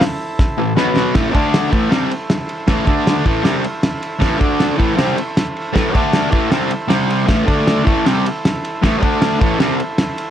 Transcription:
Already playing: E4 A4 C5
0.01 snare, open hi-hat
0.39 kick, snare
0.58 A2 E3
0.75 B2 F#3 B3 F#4 B4, snare
0.96 snare
1.15 A2 E3 A3, kick, snare, ride
1.31 D3 A3 D4 A4 D5, kick, ride
1.54 snare, ride
1.69 A2 E3 E4 A4
1.73 A3 C5, kick, ride
1.90 C3 G3 C4, snare, ride
2.11 ride
2.30 snare, ride
2.49 ride
2.68 A2 E3 A3, kick, snare, ride
2.86 D3 A3 D4 A4 D5, kick, ride
3.07 snare, ride
3.25 A2 E3 A3 E4 A4, kick, ride
3.30 C5
3.43 C3 G3 C4, snare, ride
3.64 ride
3.83 snare, ride
4.02 ride
4.19 A2 E3 A3, kick, snare, ride
4.38 D3 A3 D4 A4 D5, kick, ride
4.60 snare, ride
4.76 A2 E3 A3 E4 A4, kick, ride
4.81 C5
4.96 C3 G3 C4, snare, ride
5.18 ride
5.37 snare, ride
5.56 ride
5.73 A2 E3 A3, kick, snare, ride
5.93 D3 A3 D4 A4 D5, kick, ride
6.13 snare, ride
6.30 A2 E3 A3 E4 A4, kick, ride
6.34 C5
6.51 C3 G3 C4, snare, ride
6.71 ride
6.88 C3 G3 C4 G4 C5, snare, ride
7.10 ride
7.27 A2 E3 A3, kick, snare, ride
7.46 D3 A3 D4 A4 D5, kick, ride
7.68 snare, ride
7.84 A2 E3 A3 E4 A4, kick, ride
7.88 C5
8.06 C3 G3 C4, snare, ride
8.26 ride
8.45 snare, ride
8.65 ride
8.82 A2 E3 A3, kick, snare, ride
8.99 D3 A3 D4 A4 D5, kick, ride
9.22 snare, ride
9.37 A2 E3 A3 E4 A4, kick
9.42 C5, ride
9.58 C3 G3 C4, snare, ride
9.80 ride
9.98 snare, ride
10.18 ride

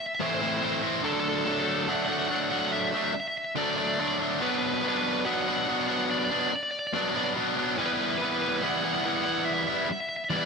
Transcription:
0.06 E5
0.15 E5
0.19 A2 E3 A3 C4 E4 C5
0.27 C5
0.35 C5
0.40 A3 C4 E4 C5
0.49 C5
0.57 C5
0.62 E3 A3 C4 E4 C5
0.72 C5
0.82 A3 C4 E4
1.03 D3 F#3 A3 D4 A4
1.13 A4
1.20 A4
1.28 A4
1.35 A4
1.44 D3 F#3 A3 A4
1.48 D4 A4
1.60 A4
1.68 A4
1.75 A4
1.83 A4
1.87 D3 F#3 A3 D4 F#5
1.96 F#5
2.05 D4 F#5
2.10 F#3 A3 F#5
2.19 F#5
2.28 D3 F#3 A3 D4 F#5
2.35 F#5
2.44 F#5
2.51 F#3 A3 D4 F#5
2.59 F#5
2.67 F#5
2.73 E5
2.81 E5
2.88 E5
2.93 F#3 A3 D4
2.97 E5
3.04 E5
3.12 E5, muted distorted electric guitar stroke
3.20 E5
3.28 E5
3.38 E5
3.45 E5
3.56 D3 F#3 A3 D4 D5
3.65 D5
3.71 D5
3.77 F#3 A3 D4 D5
3.87 D5
3.94 D5
3.98 D3 F#3 A3 D4 D5
4.08 D5
4.19 F#3 A3 D4
4.41 B2 F#3 B3 D4 B4
4.50 B4
4.58 B4
4.66 B4
4.73 B4
4.81 B2 F#3 B3 B4
4.86 D4 B4
4.97 B4
5.03 B4
5.13 B4
5.21 B4
5.25 B2 F#3 B3 D4 F#5
5.33 F#5
5.42 F#5
5.47 F#3 B3 D4 F#5
5.56 F#5
5.66 B2 F#3 B3 F#5
5.70 D4 F#5
5.80 F#5
5.88 F#3 B3 D4 F#5
5.96 F#5
6.04 F#5
6.10 D5
6.18 D5
6.25 D5
6.30 F#3 B3 D4 D5
6.40 D5
6.49 D5, muted distorted electric guitar stroke
6.56 D5
6.63 D5
6.71 D5
6.79 D5
6.87 D5
6.93 B2 F#3 B3 D4 D5
7.01 D5
7.09 D5
7.14 F#3 B3 D4 D5
7.24 D5
7.35 B2 F#3 B3 D4
7.57 F#3 B3 D4
7.78 E3 G3 B3 E4 B4
7.86 B4
7.93 B4
8.02 B4
8.09 B4
8.18 E3 G3 B3 B4
8.22 E4 B4
8.33 B4
8.42 B4
8.49 B4
8.57 B4
8.61 E3 G3 B3 E4 F#5
8.69 F#5
8.77 F#5
8.83 G3 B3 E4 F#5
8.93 F#5
9.01 E3 G3 F#5
9.05 B3 E4 F#5
9.17 F#5
9.24 G3 B3 E4 F#5
9.32 F#5
9.40 F#5
9.46 E5
9.54 E5
9.62 E5
9.68 G3 B3 E4 E5
9.77 E5
9.85 E5
9.89 E5, muted distorted electric guitar stroke
10.01 E5
10.09 E5
10.17 E5
10.24 E5
10.29 E3 G3 B3 E4 D5
10.36 D5

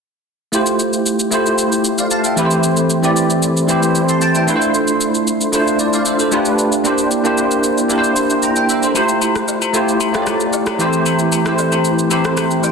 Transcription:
0.52 A3 E4 F4 G4 C5, shaker
0.66 shaker
0.79 shaker
0.93 shaker
1.06 shaker
1.19 shaker
1.31 A3 E4 F4 G4 C5, shaker
1.46 shaker
1.58 shaker
1.72 shaker
1.85 shaker
1.98 D5 F5, shaker
2.11 F5 A5, shaker
2.24 E5 G5, shaker
2.36 E3 A3 C4 E4 G4 B4, shaker
2.45 C5
2.51 shaker
2.63 shaker
2.77 shaker
2.90 shaker
3.02 E3 A3 C4 E4 G4 D5, shaker
3.16 shaker
3.30 shaker
3.43 shaker
3.57 shaker
3.67 E3 A3 C4 E4 G4 C5, shaker
3.83 shaker
3.95 shaker
4.09 A5 C6, shaker
4.21 G5 A5, shaker
4.35 E5 G5, shaker
4.47 A3 D4 E4 F4 B4 C6, shaker
4.56 C5
4.62 shaker
4.74 shaker
4.88 shaker
5.01 shaker
5.15 shaker
5.27 shaker
5.41 shaker
5.52 A3 D4 E4 F4 C5, shaker
5.67 shaker
5.79 D5, shaker
5.93 D5 F5, shaker
6.05 C5 E5, shaker
6.19 A4 C5, shaker
6.31 A3 D4 F4 G4 B4, shaker
6.45 shaker
6.59 shaker
6.72 shaker
6.84 A#3 D4 E4 G4 C5, shaker
6.98 shaker
7.11 shaker
7.23 A#3 D4 E4 G4 C5, shaker
7.38 shaker
7.51 shaker
7.64 shaker
7.78 shaker
7.89 A#3 D4 E4 G4 A#4, shaker
7.98 C5
8.04 shaker
8.16 shaker
8.30 shaker
8.43 G5 A#5, shaker
8.56 E5 G5, shaker
8.69 C5 E5, shaker
8.83 A4 C5, shaker
8.94 A3 E4 F4 G4 C5, high agogo, shaker
9.09 shaker
9.22 high agogo, shaker
9.36 cross-stick, shaker
9.48 low woodblock, shaker
9.62 high agogo, shaker
9.73 A3 E4 F4 G4 C5, shaker
9.89 shaker
10.01 high agogo, shaker
10.13 A3 E4 F4 G4 C#5, cross-stick, shaker
10.22 D5
10.27 cross-stick, high agogo, shaker
10.40 shaker
10.53 low woodblock, shaker
10.66 cross-stick, high agogo, shaker
10.78 E3 A3 C4 E4 G4 C5, shaker
10.93 shaker
11.06 high agogo, shaker
11.19 shaker
11.32 high agogo, shaker
11.45 E3 A3 C4 E4 G4 C5, cross-stick, shaker
11.58 low woodblock, shaker
11.72 high agogo, shaker
11.85 shaker
11.99 shaker
12.10 E3 A3 C4 E4 G4 C5, high agogo, shaker
12.25 cross-stick, shaker
12.37 cross-stick, high agogo, shaker
12.51 shaker
12.63 G5, low woodblock, shaker

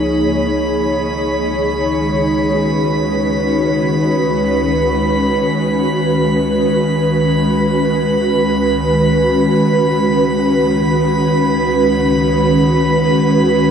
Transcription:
Already playing: C#2 F3 A#3 D#4 G#4 C#5 B5 B6
0.48 D#3
0.81 G#3
1.61 C#4 F#4
1.90 B4

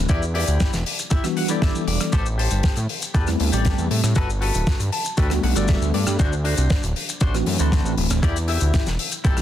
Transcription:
0.09 E2 E4 G4 D5, kick, closed hi-hat, shaker
0.22 shaker
0.34 E4 G4 D5, open hi-hat
0.47 D2, closed hi-hat, shaker
0.60 kick, snare, closed hi-hat, shaker
0.73 E1, snare, closed hi-hat, shaker
0.86 open hi-hat
0.99 closed hi-hat, shaker
1.10 E4 G4 E5, kick, closed hi-hat, shaker
1.23 E3 G3 B3 D4 F#4, cross-stick, closed hi-hat, shaker
1.36 F#5, muted clean electric guitar stroke, open hi-hat
1.49 E3 G3 B3 D4 E4 G4 A4 D5, closed hi-hat, shaker
1.62 E5, kick, snare, closed hi-hat, shaker
1.75 shaker
1.87 E1 D5, open hi-hat
2.01 cross-stick, closed hi-hat, shaker
2.12 A1 G4 A4 C5, kick, closed hi-hat, shaker
2.26 shaker
2.38 G4 A4 C5, open hi-hat
2.51 G1, closed hi-hat, shaker
2.63 kick, snare, closed hi-hat, shaker
2.76 A2, closed hi-hat, shaker
2.89 open hi-hat
3.02 closed hi-hat, shaker
3.14 E2 G4 A4 B4, kick, closed hi-hat, shaker
3.27 G3 A3 B3 C4 E4, cross-stick, closed hi-hat, shaker
3.39 D2, muted clean electric guitar stroke, open hi-hat
3.52 A1 G3 A3 C4 G4 A4 D5, closed hi-hat, shaker
3.65 kick, snare, closed hi-hat, shaker
3.78 E2, shaker
3.91 A2, open hi-hat
4.04 A2, cross-stick, closed hi-hat, shaker
4.15 G1 F#4 A4 B4, kick, closed hi-hat, shaker
4.30 shaker
4.41 F#4 A4 B4, open hi-hat
4.54 D1, closed hi-hat, shaker
4.67 kick, snare, closed hi-hat, shaker
4.80 G2, closed hi-hat, shaker
4.92 A5, open hi-hat
5.04 closed hi-hat, shaker
5.17 D2 F#4 A4 B4 G5, kick, closed hi-hat, shaker
5.30 G3 A3 B3 D4 F#4, cross-stick, closed hi-hat, shaker
5.43 B1 F#5, muted clean electric guitar stroke, open hi-hat
5.55 G1 G3 A3 B3 D4 F#4 A4 D5, closed hi-hat, shaker
5.68 E5, kick, snare, closed hi-hat, shaker
5.81 D2, shaker
5.94 G2 D5, open hi-hat
6.07 G2, cross-stick, closed hi-hat, shaker
6.19 D2 D4 F#4 C5, kick, closed hi-hat, shaker
6.33 shaker
6.44 D4 F#4 C5, open hi-hat
6.57 C2, closed hi-hat, shaker
6.70 kick, snare, closed hi-hat, shaker
6.83 D1, closed hi-hat, shaker
6.96 open hi-hat
7.09 closed hi-hat, shaker
7.21 A1 D4 F#4 C5, kick, closed hi-hat, shaker
7.34 E3 A3 C4 D4 F#4, cross-stick, closed hi-hat, shaker
7.46 F#2, muted clean electric guitar stroke, open hi-hat
7.59 D2 E3 A3 C4 D4 F#4 C5 B5, closed hi-hat, shaker
7.72 kick, snare, closed hi-hat, shaker
7.85 A1, shaker
7.97 D1, open hi-hat
8.10 D1, cross-stick, closed hi-hat, shaker
8.22 E2 E4 G4 D5, kick, closed hi-hat, shaker
8.36 closed hi-hat, shaker
8.48 E4 G4 E5, open hi-hat
8.61 D2, closed hi-hat, shaker
8.74 kick, snare, closed hi-hat, shaker
8.86 E1, snare, closed hi-hat, shaker
8.99 open hi-hat
9.12 closed hi-hat, shaker
9.24 B1 E4 G4 A4, kick, closed hi-hat, shaker
9.37 E3 G3 B3 D4 F#4, cross-stick, closed hi-hat, shaker

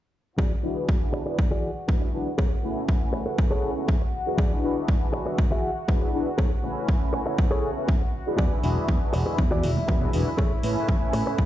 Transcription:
0.38 E3 F#4 G#4 D5 F#5, kick
0.63 D4 E4 F#4 G#4 B4, muted clean electric guitar stroke
0.89 kick
1.13 muted clean electric guitar stroke
1.26 D4 E4 F#4 G#4 B4, muted clean electric guitar stroke
1.38 muted clean electric guitar stroke, kick
1.51 E3 F#4 G#4 D5
1.88 D4 E4 F#4 G#4 B4, muted clean electric guitar stroke, kick
2.01 muted clean electric guitar stroke
2.13 D4 E4 F#4 G#4 B4
2.38 G#4 A4 C#5, kick
2.63 A3 C#4 E4 B4 G#5, muted clean electric guitar stroke
2.89 kick
3.13 muted clean electric guitar stroke
3.26 C#4 E4 A4 B4 G#5, muted clean electric guitar stroke
3.38 muted clean electric guitar stroke, kick
3.51 G#4 A4 C#5
3.76 C#4 E4 G#4 A4 B4
3.88 muted clean electric guitar stroke, kick
4.01 muted clean electric guitar stroke
4.26 D4 E4 F#4 G#4 B4
4.38 E3 F#4 G#4 D5, kick
4.62 D4 E4 F#4 G#4 B4, muted clean electric guitar stroke
4.88 kick
5.13 muted clean electric guitar stroke
5.26 D4 E4 F#4 G#4 B4, muted clean electric guitar stroke
5.38 muted clean electric guitar stroke, kick
5.51 E3 F#4 G#4 E5
5.88 D4 E4 F#4 G#4 B4, muted clean electric guitar stroke, kick
6.01 muted clean electric guitar stroke
6.13 D4 E4 F#4 G#4 B4
6.38 G#4 A4 C#5, kick
6.63 A3 C#4 E4 B4 G#5, muted clean electric guitar stroke
6.88 kick
7.13 muted clean electric guitar stroke
7.26 C#4 E4 A4 B4 G#5, muted clean electric guitar stroke
7.38 muted clean electric guitar stroke, kick
7.51 G#4 A4 C#5
7.76 C#4 E4 G#4 A4 B4
7.88 muted clean electric guitar stroke, kick
8.01 muted clean electric guitar stroke
8.26 D4 E4 F#4 G#4 B4
8.38 E2 E4 F#4 G#4 D5 E5, kick
8.51 tambourine
8.62 E1 D4 E4 F#4 G#4 B4, muted clean electric guitar stroke, open hi-hat, tambourine
8.77 muted fingered electric bass stroke
8.88 E2, kick
9.02 tambourine
9.13 E1, muted clean electric guitar stroke, open hi-hat
9.26 D4 E4 F#4 G#4 B4, muted clean electric guitar stroke
9.38 E2, muted clean electric guitar stroke, kick
9.51 F#4 G#4 D5, high conga
9.63 E1, open hi-hat, tambourine
9.76 muted fingered electric bass stroke, tambourine, low conga
9.88 E2 D4 E4 F#4 G#4 B4, muted clean electric guitar stroke, kick, tambourine
10.01 muted clean electric guitar stroke, tambourine, low conga
10.13 E1 D4 E4 F#4 G#4 B4, open hi-hat, tambourine
10.27 tambourine
10.38 A1 G#4 A4 C#5, kick
10.52 tambourine
10.62 A2 A3 C#4 E4 B4 G#5, muted clean electric guitar stroke, open hi-hat, tambourine
10.76 muted fingered electric bass stroke
10.88 A1, kick
11.13 A2, muted clean electric guitar stroke, open hi-hat, tambourine
11.26 C#4 E4 A4 B4 G#5, muted clean electric guitar stroke
11.38 A1, muted clean electric guitar stroke, kick, tambourine

